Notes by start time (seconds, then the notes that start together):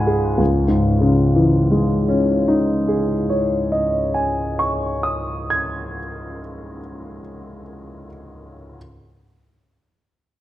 Already playing: C#2 G#2 G#4 F#5 G#5 B5
0.07 G#4
0.38 C#2
0.68 G#2
1.01 C#3
1.36 E3
1.71 G#3
2.09 C#4
2.48 D#4
2.88 G#4
3.30 C#5
3.72 D#5
4.14 G#5
4.59 C#6
5.03 D#6
5.50 G#6